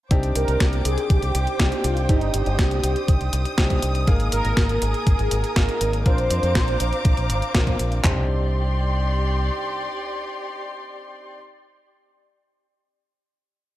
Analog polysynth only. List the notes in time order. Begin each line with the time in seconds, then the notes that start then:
0.36 A#4
0.86 G#4
1.11 G4
1.85 F4
2.09 D#4
2.34 G4
4.33 A#4
4.82 G#4
5.07 G#4
5.57 A#4
6.07 C5